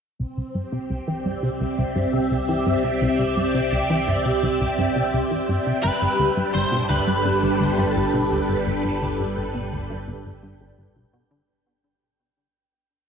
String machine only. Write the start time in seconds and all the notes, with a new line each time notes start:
0.19 C4
0.62 G4
1.18 D5
1.30 E5
5.84 G3
6.08 D4
6.66 A4
6.99 B4